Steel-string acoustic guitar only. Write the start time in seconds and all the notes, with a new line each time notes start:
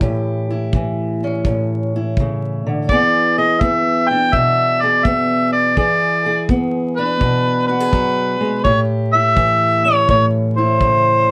Already playing: E3 E4
0.01 A2 G4
0.50 E4
0.75 E3
1.24 C#4
1.46 A2
1.96 E4
2.20 C#3
2.66 D3
2.91 E3 B3 G#4
3.38 G#4
3.61 B3
4.11 D4
4.34 B2
4.83 G#4
5.05 B3
5.77 E3 G#4
6.26 G#4
6.49 B3
6.99 D4
7.21 B2
7.69 F#4
7.80 G#4
7.92 F#3
8.41 G#3
8.65 A2 G4
9.15 E4
9.36 E3
9.85 C#4
10.09 A2
10.58 E4
10.83 C#3